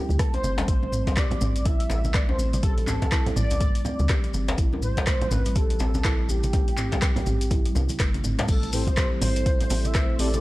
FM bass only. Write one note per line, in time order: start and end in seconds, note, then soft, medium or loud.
0.10 0.18 D2 loud
0.44 0.65 G1 medium
0.68 1.19 A1 loud
1.17 1.29 C2 medium
1.41 1.87 A1 loud
1.90 2.36 A1 loud
2.39 3.14 A1 medium
3.12 3.24 C2 medium
3.36 3.82 A1 loud
4.00 4.08 D2 medium
4.34 4.55 G1 medium
4.58 5.09 A1 loud
5.07 5.19 C2 medium
5.31 5.77 A1 loud
5.80 6.26 A1 loud
6.29 7.04 A1 medium
7.02 7.14 C2 medium
7.27 7.73 A1 loud
7.75 7.87 C2 loud
8.00 8.21 G1 loud
8.24 8.36 G1 medium
8.49 8.99 A1 loud
8.97 9.09 C2 medium
9.22 9.68 A1 loud
9.70 10.16 A1 loud
10.19 10.40 A1 medium